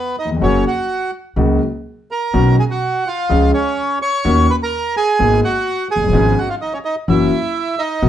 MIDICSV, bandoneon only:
0, 0, Header, 1, 2, 480
1, 0, Start_track
1, 0, Tempo, 478851
1, 423, Time_signature, 4, 2, 24, 8
1, 4746, Tempo, 469851
1, 8173, End_track
2, 0, Start_track
2, 0, Title_t, "Bandoneon"
2, 0, Program_c, 0, 23
2, 0, Note_on_c, 0, 59, 62
2, 0, Note_on_c, 0, 71, 77
2, 160, Note_off_c, 0, 71, 0
2, 161, Note_off_c, 0, 59, 0
2, 190, Note_on_c, 0, 75, 72
2, 194, Note_on_c, 0, 63, 55
2, 296, Note_off_c, 0, 75, 0
2, 300, Note_off_c, 0, 63, 0
2, 427, Note_on_c, 0, 61, 62
2, 434, Note_on_c, 0, 73, 89
2, 646, Note_off_c, 0, 61, 0
2, 650, Note_off_c, 0, 73, 0
2, 673, Note_on_c, 0, 66, 56
2, 680, Note_on_c, 0, 78, 75
2, 1111, Note_off_c, 0, 66, 0
2, 1115, Note_off_c, 0, 78, 0
2, 2116, Note_on_c, 0, 70, 66
2, 2128, Note_on_c, 0, 82, 78
2, 2562, Note_off_c, 0, 70, 0
2, 2569, Note_off_c, 0, 82, 0
2, 2595, Note_on_c, 0, 68, 59
2, 2604, Note_on_c, 0, 80, 77
2, 2649, Note_off_c, 0, 68, 0
2, 2656, Note_off_c, 0, 80, 0
2, 2710, Note_on_c, 0, 66, 64
2, 2720, Note_on_c, 0, 78, 80
2, 3047, Note_off_c, 0, 66, 0
2, 3076, Note_on_c, 0, 65, 67
2, 3082, Note_on_c, 0, 77, 85
2, 3089, Note_off_c, 0, 78, 0
2, 3520, Note_off_c, 0, 65, 0
2, 3523, Note_off_c, 0, 77, 0
2, 3545, Note_on_c, 0, 61, 66
2, 3550, Note_on_c, 0, 73, 89
2, 3994, Note_off_c, 0, 61, 0
2, 3996, Note_off_c, 0, 73, 0
2, 4032, Note_on_c, 0, 73, 75
2, 4032, Note_on_c, 0, 85, 99
2, 4476, Note_off_c, 0, 73, 0
2, 4516, Note_on_c, 0, 71, 64
2, 4518, Note_on_c, 0, 83, 79
2, 4524, Note_off_c, 0, 85, 0
2, 4568, Note_off_c, 0, 71, 0
2, 4570, Note_off_c, 0, 83, 0
2, 4640, Note_on_c, 0, 70, 62
2, 4642, Note_on_c, 0, 82, 83
2, 4969, Note_off_c, 0, 70, 0
2, 4970, Note_off_c, 0, 82, 0
2, 4985, Note_on_c, 0, 80, 94
2, 4990, Note_on_c, 0, 68, 70
2, 5429, Note_off_c, 0, 80, 0
2, 5431, Note_off_c, 0, 68, 0
2, 5471, Note_on_c, 0, 66, 65
2, 5471, Note_on_c, 0, 78, 91
2, 5913, Note_off_c, 0, 78, 0
2, 5914, Note_off_c, 0, 66, 0
2, 5947, Note_on_c, 0, 68, 70
2, 5948, Note_on_c, 0, 80, 82
2, 6392, Note_off_c, 0, 68, 0
2, 6430, Note_on_c, 0, 78, 69
2, 6438, Note_on_c, 0, 66, 58
2, 6440, Note_off_c, 0, 80, 0
2, 6539, Note_off_c, 0, 78, 0
2, 6543, Note_off_c, 0, 66, 0
2, 6545, Note_on_c, 0, 77, 73
2, 6552, Note_on_c, 0, 65, 53
2, 6599, Note_off_c, 0, 77, 0
2, 6605, Note_off_c, 0, 65, 0
2, 6667, Note_on_c, 0, 75, 73
2, 6672, Note_on_c, 0, 63, 55
2, 6781, Note_off_c, 0, 63, 0
2, 6788, Note_on_c, 0, 73, 63
2, 6790, Note_off_c, 0, 75, 0
2, 6790, Note_on_c, 0, 61, 57
2, 6841, Note_off_c, 0, 73, 0
2, 6843, Note_off_c, 0, 61, 0
2, 6904, Note_on_c, 0, 75, 78
2, 6906, Note_on_c, 0, 63, 55
2, 7012, Note_off_c, 0, 75, 0
2, 7014, Note_off_c, 0, 63, 0
2, 7149, Note_on_c, 0, 76, 80
2, 7153, Note_on_c, 0, 64, 62
2, 7829, Note_off_c, 0, 64, 0
2, 7864, Note_on_c, 0, 75, 79
2, 7870, Note_on_c, 0, 63, 63
2, 7890, Note_off_c, 0, 76, 0
2, 8173, Note_off_c, 0, 63, 0
2, 8173, Note_off_c, 0, 75, 0
2, 8173, End_track
0, 0, End_of_file